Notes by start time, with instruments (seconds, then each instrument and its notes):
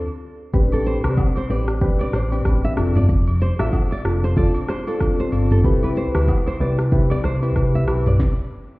0.53 fingered electric bass A1, synth keys C4 D4 G4 B4, kick, shaker
0.72 nylon-string guitar A4, high agogo, shaker
0.85 nylon-string guitar C5, shaker
1.04 fingered electric bass C2, synth keys C4 D4 G4 B4, cross-stick, high agogo, shaker
1.17 kick, low woodblock, shaker
1.36 nylon-string guitar C5, high agogo, shaker
1.49 fingered electric bass A1, synth keys C4 D4 G4 B4, nylon-string guitar D5
1.68 cross-stick, shaker
1.81 synth keys C4 D4 G4 B4, kick, shaker
1.99 nylon-string guitar D5, high agogo, shaker
2.13 fingered electric bass A1, nylon-string guitar C5, cross-stick, shaker
2.31 synth keys C4 D4 G4 B4, high agogo, shaker
2.45 fingered electric bass A1, kick, cross-stick, shaker
2.64 nylon-string guitar E5, shaker
2.77 fingered electric bass F1, synth keys C4 D4 F4 A4, cross-stick, high agogo, shaker
2.95 nylon-string guitar D5, mid tom, shaker
3.09 fingered electric bass F1, kick, shaker
3.27 high agogo, shaker
3.40 nylon-string guitar C5, shaker
3.59 fingered electric bass A1, synth keys C4 D4 F4 A4, nylon-string guitar E5, cross-stick, high agogo, shaker
3.72 kick, low woodblock, shaker
3.91 nylon-string guitar D5, high agogo, shaker
4.05 fingered electric bass F1, synth keys C4 D4 F4 A4, cross-stick
4.24 nylon-string guitar C5, shaker
4.36 synth keys C4 D4 F4 A4, nylon-string guitar D5, kick, shaker
4.54 high agogo, shaker
4.68 nylon-string guitar C5, cross-stick, shaker
4.87 synth keys C4 D4 F4 A4, nylon-string guitar A4, high agogo, shaker
5.00 kick, cross-stick, shaker
5.19 nylon-string guitar C5, shaker
5.32 fingered electric bass G1, synth keys C4 D4 F4 A4, high agogo, shaker
5.50 nylon-string guitar A4, mid tom, shaker
5.64 fingered electric bass C2, synth keys C4 E4 G4 B4, kick, shaker
5.82 nylon-string guitar B4, high agogo, shaker
5.96 nylon-string guitar C5, shaker
6.14 fingered electric bass D2, synth keys C4 E4 G4 B4, cross-stick, high agogo, shaker
6.28 kick, low woodblock, shaker
6.47 nylon-string guitar C5, high agogo, shaker
6.60 fingered electric bass C2, synth keys C4 E4 G4 B4, nylon-string guitar D5
6.79 cross-stick, shaker
6.92 synth keys C4 E4 G4 B4, kick, shaker
7.10 nylon-string guitar D5, high agogo, shaker
7.24 fingered electric bass C2, nylon-string guitar C5, cross-stick, shaker
7.42 synth keys C4 E4 G4 B4, high agogo, shaker
7.56 fingered electric bass C2, kick, cross-stick, shaker
7.74 nylon-string guitar E5, shaker
7.88 fingered electric bass B1, synth keys C4 E4 G4 B4, cross-stick, high agogo, shaker
8.05 nylon-string guitar D5, mid tom, shaker
8.20 kick, snare